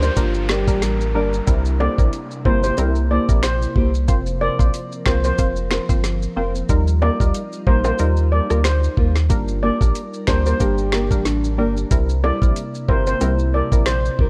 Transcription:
Already playing: D2 G3 D4 A#4, downlifter
0.02 D4 G4 A#4 C5 D5, maracas
0.16 G1 G3 A#3 D4 F4 A#4, kick, closed hi-hat, maracas
0.34 muted nylon-string guitar stroke, maracas
0.49 D4 G4 A#4 D5, finger snap, snare
0.67 A1 G3 A#3 D4 A#4, kick, maracas
0.82 A#4, snare, closed hi-hat, maracas
1.01 maracas
1.15 G1 G3 A#3 D4 G4 A#4 D5
1.33 maracas
1.47 C2 C3 G3 A#3 C4 E4 A#4, kick, closed hi-hat, maracas
1.65 maracas
1.80 A#3 E4 G4 C5 D5, high timbale
1.98 A#1 G3 C4 E4 A#4, kick, maracas
2.13 closed hi-hat, maracas
2.31 maracas
2.45 G1 G3 A#3 C4 E4 G4 A#4 C5, kick
2.63 A#3 E4 G4 C5, maracas
2.77 C2 G3 C4 E4 A#4, closed hi-hat, high timbale, maracas
2.95 maracas
3.10 A#3 E4 G4 C5 D5
3.28 A#1 G3 C4 E4 A#4, kick, maracas
3.43 C5, finger snap, snare, closed hi-hat, maracas
3.62 maracas
3.76 C2 A#3 E4 G4 C5, kick
3.94 maracas
4.08 F1 F3 A#3 C4 F4 A#4 C5, kick, closed hi-hat, maracas
4.26 maracas
4.41 C4 F4 A#4 C5 D5
4.59 A#1 A#3 C4 F4 C5, kick, maracas
4.74 closed hi-hat, maracas
4.92 maracas
5.06 C2 A#3 C4 F4 A#4 C5, finger snap, kick, snare
5.24 C4 F4 A#4 C5, maracas
5.38 F1 A#3 C4 F4 C5, kick, closed hi-hat, maracas
5.57 muted nylon-string guitar stroke, maracas
5.71 C4 F4 A#4 C5, finger snap, snare
5.89 G1 A#3 C4 F4 C5, kick, maracas
6.04 snare, closed hi-hat, maracas
6.23 maracas
6.36 F1 A#3 C4 F4 A#4 C5
6.55 maracas
6.69 D#2 G3 D#4 F4 A#4, kick, closed hi-hat, maracas
6.87 maracas
7.01 G3 A#3 F4 A#4 D5, high timbale
7.20 D2 G3 D#4 F4 A#4, kick, maracas
7.34 closed hi-hat, maracas
7.52 maracas
7.67 A#1 G3 A#3 D#4 F4 A#4 C5, kick
7.85 G3 A#3 F4 A#4 C5, high timbale, maracas
7.99 D#2 G3 D#4 F4 A#4, closed hi-hat, maracas
8.17 maracas
8.32 G3 A#3 F4 A#4 D5
8.50 D2 G3 A#3 D#4 F4 A#4, cross-stick, maracas
8.64 C5, finger snap, snare, closed hi-hat, maracas
8.83 maracas
8.97 D#2 G3 A#3 F4 A#4, kick
9.15 snare, maracas
9.29 G1 G3 A#3 D4 A#4, kick, closed hi-hat, maracas
9.48 maracas
9.62 A#3 D4 G4 A#4 D5
9.81 A#1 G3 A#3 D4 A#4, kick, maracas
9.95 closed hi-hat, maracas
10.14 maracas
10.27 D2 G3 A#3 D4 G4 A#4 C5, finger snap, kick, snare
10.46 A#3 D4 G4 A#4 C5, maracas
10.60 G1 G3 A#3 D4 G4 A#4, kick, closed hi-hat, maracas
10.78 muted nylon-string guitar stroke, maracas
10.93 A#3 D4 G4 A#4, finger snap, snare
11.11 A1 G3 A#3 D4 A#4, kick, maracas
11.26 D4, snare, closed hi-hat, maracas
11.44 maracas
11.58 G1 G3 A#3 D4 G4 A#4
11.77 maracas
11.91 C2 C3 G3 A#3 C4 E4 A#4, kick, closed hi-hat, maracas
12.09 maracas
12.23 G3 C4 E4 A#4 D5, high timbale
12.41 A#1 G3 C4 E4 A#4, kick, maracas
12.56 closed hi-hat, maracas
12.75 maracas
12.88 G1 G3 C4 E4 A#4 C5, kick
13.07 G3 C4 E4 A#4 C5, maracas
13.21 C2 G3 C4 E4 A#4, closed hi-hat, high timbale, maracas
13.39 maracas
13.53 G3 C4 E4 A#4 D5
13.72 A#1 G3 C4 E4 A#4, kick, maracas
13.86 C5, finger snap, snare, closed hi-hat, maracas
14.05 maracas
14.19 C2 G3 C4 E4 A#4, kick

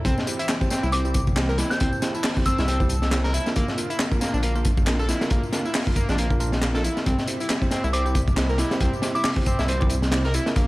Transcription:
0.05 C2 E3 C4 G4, kick, closed hi-hat, tambourine
0.18 snare, tambourine
0.27 C4 E4 G4 C5, closed hi-hat, tambourine
0.39 E4, closed hi-hat, tambourine
0.49 snare, clap, closed hi-hat, tambourine
0.61 C4 E4 G4 C5, kick, tambourine
0.71 C4, snare, closed hi-hat, tambourine
0.83 C2 E4, tambourine
0.92 C4 D6, closed hi-hat, tambourine
1.05 C4 E4 G4 C5, tambourine
1.14 kick, closed hi-hat, tambourine
1.27 kick, tambourine
1.36 C4 E4 G4 C5, snare, clap, closed hi-hat, tambourine
1.49 A#4, tambourine
1.58 E4, snare, closed hi-hat, tambourine
1.70 C4 E4 G4 C5 G6, snare, tambourine
1.80 C2 C4 A4, kick, closed hi-hat, tambourine
1.93 tambourine
2.02 C4 E4 G4 C5, snare, closed hi-hat, tambourine
2.15 E4, tambourine
2.23 snare, clap, open hi-hat, tambourine
2.36 C4 E4 G4 C5, kick, tambourine
2.46 C4 E6, kick, closed hi-hat, tambourine
2.58 C2 E4, snare, tambourine
2.68 C4, closed hi-hat, tambourine
2.80 C4 E4 G4 C5, kick, tambourine
2.89 closed hi-hat, tambourine
3.02 snare, tambourine
3.11 C4 E4 G4 C5, snare, clap, closed hi-hat, tambourine
3.24 A#4, snare, tambourine
3.34 E4, closed hi-hat, tambourine
3.46 A#3 D4 F4 A#4, snare, tambourine
3.56 A#1 D3 A#3 F4, kick, closed hi-hat, tambourine
3.68 snare, tambourine
3.77 A#3 D4 F4 A#4, closed hi-hat, tambourine
3.90 E4, closed hi-hat, tambourine
3.99 snare, clap, closed hi-hat, tambourine
4.12 A#3 D4 F4 A#4, kick, tambourine
4.21 A#3, snare, closed hi-hat, tambourine
4.34 A#1 D4, tambourine
4.43 A#3, closed hi-hat, tambourine
4.55 A#3 D4 F4 A#4, tambourine
4.65 kick, closed hi-hat, tambourine
4.77 kick, tambourine
4.87 A#3 D4 F4 A#4, snare, clap, closed hi-hat, tambourine
4.99 A4, tambourine
5.09 E4, snare, closed hi-hat, tambourine
5.21 A#3 D4 F4 A#4, snare, tambourine
5.30 A#1 A#3, kick, closed hi-hat, tambourine
5.43 tambourine
5.52 A#3 D4 F4 A#4, snare, closed hi-hat, tambourine
5.65 E4, tambourine
5.74 snare, clap, open hi-hat, tambourine
5.87 A#3 D4 F4 A#4, kick, tambourine
5.96 A#3, kick, closed hi-hat, tambourine
6.09 A#1 D4, snare, tambourine
6.18 A#3, closed hi-hat, tambourine
6.30 A#3 D4 F4 A#4, kick, tambourine
6.40 A#3 D4 F4 A#4, closed hi-hat, tambourine
6.52 snare, tambourine
6.61 snare, clap, closed hi-hat, tambourine
6.74 A#3 D4 F4 A4 A#4, snare, tambourine
6.84 E4, closed hi-hat, tambourine
6.97 snare, tambourine
7.06 C2 C3 G3 C4 E4, kick, closed hi-hat, tambourine
7.18 snare, tambourine
7.27 C4 E4 G4 C5, closed hi-hat, tambourine
7.40 E4, closed hi-hat, tambourine
7.49 snare, clap, closed hi-hat, tambourine
7.62 C4 E4 G4 C5, kick, tambourine
7.71 C4, snare, closed hi-hat, tambourine
7.84 C2 E4, tambourine
7.93 C4 D6, closed hi-hat, tambourine
8.06 C4 E4 G4 C5, tambourine
8.15 kick, closed hi-hat, tambourine
8.28 kick, tambourine
8.37 C4 E4 G4 C5, snare, clap, closed hi-hat, tambourine
8.49 A#4, tambourine
8.58 E4, snare, closed hi-hat, tambourine
8.71 C4 E4 G4 C5, snare, tambourine
8.80 C2 C4, kick, closed hi-hat, tambourine
8.93 tambourine
9.02 C4 E4 G4 C5, snare, closed hi-hat, tambourine
9.15 E4 D6, tambourine
9.24 D6, snare, clap, open hi-hat, tambourine
9.36 C4 E4 G4 C5, kick, tambourine
9.46 C4, kick, closed hi-hat, tambourine
9.59 C2 E4, snare, tambourine
9.68 C4, closed hi-hat, tambourine
9.81 C4 E4 G4 C5, kick, tambourine
9.89 closed hi-hat, tambourine
10.02 snare, tambourine
10.11 C4 E4 G4 C5, snare, clap, closed hi-hat, tambourine
10.25 A#4, snare, tambourine
10.34 E4, closed hi-hat, tambourine
10.46 A#3 D4 F4 A#4, snare, tambourine
10.55 A#1 D3 A#3 F4, kick, closed hi-hat, tambourine

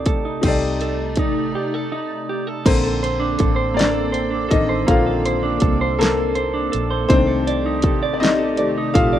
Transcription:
Already playing: C3 A3 C4 D#4 G4 A4 D5
0.06 A#1 A4, kick, closed hi-hat
0.25 D#4
0.41 C2 C3 A3 C4 D#4 G4 D5, kick, closed hi-hat, crash
0.45 A4 D5
0.81 A4, closed hi-hat
1.16 A1 D#4, kick, closed hi-hat
1.55 G4
1.74 A4
1.92 D#4
2.29 G4
2.47 A4
2.65 A#1 D3 A#3 C4 A4 C5, kick, closed hi-hat, crash
2.83 A4
3.03 C5, closed hi-hat
3.20 D4
3.38 A1 A4, kick, closed hi-hat
3.56 C5
3.74 A#3 D5
3.79 D4, snare, closed hi-hat
3.93 A4
4.12 C5, closed hi-hat
4.30 D4
4.49 A1 A4 D#5, kick, closed hi-hat
4.53 D#3
4.69 C5
4.87 A#1 D3 A#3 C4 F4 A4 F5, kick, closed hi-hat
5.06 A4
5.25 C5, closed hi-hat
5.43 D4
5.60 C2 A4, kick, closed hi-hat
5.81 C5
5.99 A#3 A4, snare, closed hi-hat
6.17 A4
6.35 C5, closed hi-hat
6.54 D4
6.72 A#1 A4, closed hi-hat
6.90 C5
7.09 C2 C3 D#3 A3 C4 D4 G4 C5, kick, closed hi-hat
7.27 A4
7.47 D5, closed hi-hat
7.66 D#4
7.82 A1 A4, kick, closed hi-hat
8.03 D5
8.14 D5
8.20 C4 D#4 D#5, closed hi-hat
8.25 snare
8.39 A4
8.57 D#3 A3 D5, closed hi-hat
8.78 D#4
8.94 A#1 F4 A4 F5, kick, closed hi-hat
9.13 D5

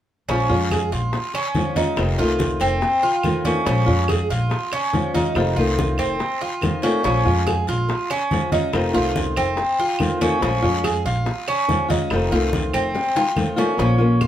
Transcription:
0.29 A#1 F3 G#3 C#4 F4, high bongo, high conga, long guiro
0.49 F2 G#3 C#4 F4, high bongo, high conga
0.70 G#4, high bongo, high conga, short guiro, claves
0.92 A#1 F4, high bongo, high conga, short guiro
1.13 muted nylon-string guitar stroke, high bongo, high conga, long guiro
1.34 C#4, high bongo, high conga, claves
1.55 F3 G#3 C#4 F4, high bongo, low bongo, high conga, short guiro
1.75 G#3 C#4 D#4 F4, high conga, short guiro
1.96 F1 C3 D#3 A3 C4 F4, high bongo, high conga, long guiro, claves
2.18 C2 D#3 A3 C4 F4, high bongo, high conga
2.39 high bongo, high conga, short guiro
2.60 F1 C4, high bongo, high conga, short guiro, claves
2.81 muted nylon-string guitar stroke, high bongo, high conga, long guiro
3.03 F4, high bongo, high conga
3.23 D#3 A3 C4 F4, high bongo, low bongo, high conga, short guiro, claves
3.45 D#3 A3 C4 C#4 F4, high conga, short guiro
3.65 A#1 F3 G#3 C#4 F4, high bongo, high conga, long guiro
3.86 F2 G#3 C#4 F4, high bongo, high conga
4.08 G#4, high bongo, high conga, short guiro, claves
4.29 A#1 F4, high bongo, high conga, short guiro
4.50 muted nylon-string guitar stroke, high bongo, high conga, long guiro
4.72 C#4, high bongo, high conga, claves
4.93 F3 G#3 C#4 F4, high bongo, low bongo, high conga, short guiro
5.14 G#3 C#4 D#4 F4, high conga, short guiro
5.34 F1 C3 D#3 A3 C4 F4, high bongo, high conga, long guiro, claves
5.56 C2 D#3 A3 C4 F4, high bongo, high conga
5.78 high bongo, high conga, short guiro
5.98 F1 C4, high bongo, high conga, short guiro, claves
6.20 muted nylon-string guitar stroke, high bongo, high conga, long guiro
6.41 F4, high bongo, high conga
6.61 D#3 A3 C4 F4, high bongo, low bongo, high conga, short guiro, claves
6.82 D#3 A3 C4 C#4 F4, short guiro
7.03 A#1 F3 G#3 C#4 F4, high bongo, high conga, long guiro
7.25 F2 G#3 C#4 F4, high bongo, high conga
7.46 G#4, high bongo, high conga, short guiro, claves
7.67 A#1 F4, high bongo, high conga, short guiro
7.88 muted nylon-string guitar stroke, high bongo, high conga, long guiro
8.10 C#4, high bongo, high conga, claves
8.31 F3 G#3 C#4 F4, high bongo, low bongo, high conga, short guiro
8.52 G#3 C#4 D#4 F4, high conga, short guiro
8.73 F1 C3 D#3 A3 C4 F4, high bongo, high conga, long guiro, claves
8.94 C2 D#3 A3 C4 F4, high bongo, high conga
9.16 high bongo, high conga, short guiro
9.36 F1 C4, high bongo, high conga, short guiro, claves
9.57 muted nylon-string guitar stroke, high bongo, high conga, long guiro
9.79 F4, high bongo, high conga
9.99 D#3 A3 C4 F4, high bongo, low bongo, high conga, short guiro, claves
10.21 D#3 A3 C4 C#4 F4, high conga, short guiro
10.41 A#1 F3 G#3 C#4 F4, high bongo, high conga, long guiro
10.62 F2 G#3 C#4 F4, high bongo, high conga
10.84 G#4, high bongo, high conga, short guiro, claves
11.05 A#1 F4, high bongo, high conga, short guiro
11.26 muted nylon-string guitar stroke, high bongo, high conga, long guiro
11.48 C#4, high bongo, high conga, claves
11.68 F3 G#3 C#4 F4, high bongo, low bongo, high conga, short guiro
11.88 G#3 C#4 D#4 F4, high conga, short guiro
12.10 F1 C3 D#3 A3 C4 F4, high bongo, high conga, long guiro, claves
12.31 C2 D#3 A3 C4 F4, high bongo, high conga
12.53 high bongo, high conga, short guiro
12.73 F1 C4, high bongo, high conga, short guiro, claves
12.95 muted nylon-string guitar stroke, high bongo, high conga, long guiro
13.15 F4, low bongo, high conga
13.36 D#3 A3 C4 F4, low bongo, high conga, short guiro, claves
13.56 D#3 A3 C4 C#4 F4, low bongo, short guiro
13.77 A#1 F3 A#3 C#4 F4, high bongo, high conga
13.98 A#3 C#4 F4, high bongo, high conga
14.21 F4, high bongo, high conga, claves

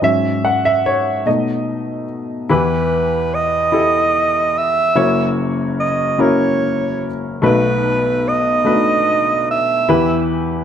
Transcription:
0.02 G#2 F#3 C#4 E5
0.45 F#5
0.65 E5
0.86 C#5
1.25 B2 A3 D#4 D#5
2.49 E2 E3 E4 G4 B4
3.34 D#5
3.72 E4 G4 A4
4.58 E5
4.95 F#1 F#2 A#3 C#4 E4 F#4 C#5
5.80 D#5
6.18 A#3 C#4 E4 F#4 A#4 C#5
7.42 B1 B2 A3 B3 D#4 F#4 B4
8.28 D#5
8.64 A3 B3 D4 F#4 B4
8.72 D#4
9.51 E5
9.89 E2 E3 E4 G4 B4

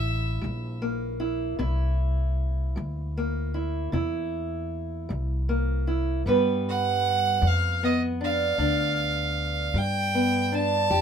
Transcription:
Already playing: A1 A#3 E4 A#4 E5
0.42 A#1 G3
0.82 A#3
1.20 E4
1.59 C2 C3 E4
2.76 D2 G3
3.17 A#3
3.54 E4
3.92 E2 C3 E4
5.09 C2 G3
5.49 A#3
5.87 E4
6.26 G2 G3 B3 B4
6.69 F#5
7.41 F2 G3
7.47 F5
7.83 B3 D#5
8.21 D4 F5
8.58 D2 G2 D4
9.74 G2 G3 G5
10.15 B3
10.52 D4 A5
10.90 F2 F3 G4

